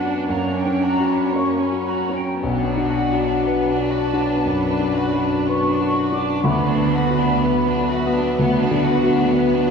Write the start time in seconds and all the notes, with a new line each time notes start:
Already playing: F#2 B3 D4 F#4 B4 F#5
0.04 D4
0.29 F#2 F#3 A#3 C#4 C#5 A#5
0.55 C#4 G5
0.66 C#4
0.82 F#4 A#5
1.00 F#4
1.07 C#4 B5
1.34 A#3 C#4 C#5 C#6
1.61 C#4 B5
1.72 F#4
1.88 F#4 A#5
2.09 C#4
2.14 C#4 G5
2.41 B1 B2 B3 D4 B4 F#5
2.68 D4
2.78 D4
2.93 F#4
3.12 F#4
3.19 D4
3.45 B3 B4
3.71 D4
3.79 F#4
3.96 F#4 A5
4.14 D4
4.21 D4
4.45 F#2 B3 B5
4.71 D4
4.80 D4
4.97 F#4
5.14 F#4
5.24 D4
5.48 B3 B4 C#6
5.73 D4
5.80 F#4
5.98 F#4
6.12 D4 D6
6.23 D4
6.44 D2 F#3 B3 B4 B5
6.72 D4
6.77 B3
6.97 F#4
7.10 F#4
7.21 D4
7.44 B3 B4
7.69 D4
7.77 F#4
7.91 F#4 E5
8.06 B3
8.16 D4
8.39 D2 B3 F#5
8.64 D4
8.71 D3
8.87 F#4
9.03 F#4
9.11 D4
9.35 B3 B4
9.58 D4
9.67 F#4